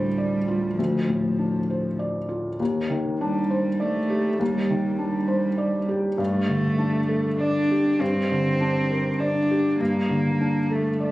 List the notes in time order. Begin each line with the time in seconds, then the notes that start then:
Already playing: D2 A2 G3 D4 C5
0.18 D5
0.48 F4
0.77 D2 F3
1.09 A2
1.39 D4
1.70 C5
1.99 D5
2.29 F4
2.60 D#2
2.90 D#3
3.20 G3 D4
3.50 C5
3.80 A3 D5
4.10 G4
4.39 D#2 G3
4.70 D#3
4.98 G3 D4
5.28 C5
5.58 D5
5.89 G4
6.18 G2 A3
6.48 D3
6.78 D4
7.08 A4
7.41 D4 D5
7.71 G4
8.00 G2 C4
8.31 D3
8.60 D4
8.91 A#4
9.20 D4 D5
9.51 G4
9.80 G2 A#3
10.10 D3
10.41 D4
10.70 A3 A4
11.00 A3 D5